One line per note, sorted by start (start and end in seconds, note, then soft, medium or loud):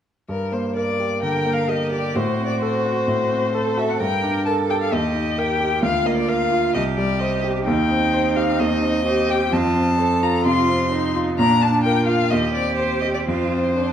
0.29 1.20 G2 soft
0.29 0.54 A#4 soft
0.52 0.90 A#3 soft
0.52 0.75 C5 soft
0.76 1.14 A#4 soft
0.76 1.22 D5 soft
1.00 1.37 G4 soft
1.22 1.60 D3 soft
1.22 1.71 A#4 soft
1.22 1.55 G5 soft
1.45 1.83 A#3 soft
1.53 1.71 F5 soft
1.69 2.17 G4 soft
1.69 2.06 A#4 soft
1.69 1.92 D#5 soft
1.92 2.15 G4 soft
1.92 2.17 D5 soft
2.15 3.06 A2 soft
2.15 3.54 F#4 soft
2.15 2.46 C5 soft
2.39 2.76 C4 soft
2.47 2.61 D5 soft
2.62 2.99 A4 soft
2.62 3.80 C5 medium
2.85 3.22 F#4 soft
3.08 3.97 A2 soft
3.31 3.68 C4 soft
3.54 3.91 A4 soft
3.54 4.01 A4 soft
3.77 4.00 F#4 soft
3.77 3.91 E5 soft
3.90 4.00 F#5 soft
4.00 4.89 G2 soft
4.00 4.46 A#4 soft
4.00 4.45 G5 medium
4.23 4.60 D4 soft
4.46 4.94 A4 soft
4.46 4.83 A#4 soft
4.46 4.54 A5 medium
4.69 4.92 G4 soft
4.69 4.74 G5 soft
4.82 4.95 F5 medium
4.92 5.80 D#2 soft
4.92 5.83 G4 soft
4.92 5.40 D#5 medium
5.15 5.51 D#4 soft
5.38 5.74 A#4 soft
5.38 5.83 G5 medium
5.60 5.83 G4 soft
5.82 6.71 D2 soft
5.82 6.76 F4 soft
5.82 6.08 F5 medium
6.05 6.42 A#3 soft
6.05 6.17 D#5 soft
6.17 6.30 D5 medium
6.28 6.65 A#4 soft
6.28 6.74 F5 medium
6.52 6.75 F4 soft
6.74 7.64 C2 soft
6.74 7.67 G4 soft
6.74 6.82 D#5 medium
6.97 7.34 G3 soft
6.97 7.21 D5 medium
7.19 7.57 C5 soft
7.19 7.43 D#5 medium
7.44 7.67 G4 soft
7.66 8.57 D#2 soft
7.66 9.03 D#4 medium
7.66 8.38 G5 medium
7.90 8.27 C4 soft
8.13 8.50 C5 soft
8.36 8.74 G4 soft
8.36 8.61 F5 medium
8.60 9.50 D#2 soft
8.60 9.32 D#5 medium
8.83 9.20 C4 soft
9.05 9.51 G4 soft
9.05 9.43 C5 soft
9.29 9.53 G4 soft
9.29 9.54 G5 medium
9.52 10.43 F2 medium
9.52 9.97 F4 medium
9.52 10.24 A5 medium
9.76 10.13 C4 soft
9.98 10.44 A4 medium
9.98 10.36 C5 soft
10.22 10.60 F4 soft
10.22 10.46 A#5 medium
10.45 10.83 C3 soft
10.45 10.90 F4 medium
10.45 11.14 C6 medium
10.69 11.06 C4 soft
10.91 11.37 D#4 soft
10.91 11.29 C5 soft
11.15 11.39 F4 soft
11.38 12.29 A#2 soft
11.38 11.84 D4 soft
11.38 11.63 A#5 medium
11.62 12.00 D4 soft
11.62 11.83 A5 medium
11.84 12.34 F4 soft
11.84 12.23 A#4 soft
11.84 12.07 G5 medium
12.07 12.32 F4 soft
12.07 12.32 F5 medium
12.31 13.24 D#2 soft
12.31 13.28 G4 medium
12.31 12.54 D#5 medium
12.54 12.93 C4 soft
12.54 12.76 D5 medium
12.77 13.01 C5 medium
12.77 13.18 C5 soft
13.01 13.28 G4 soft
13.01 13.07 D#5 soft
13.14 13.19 D5 soft
13.26 13.93 F2 soft
13.26 13.71 F4 soft
13.26 13.93 C5 medium
13.53 13.91 C4 soft
13.77 13.93 D4 soft
13.77 13.93 C5 soft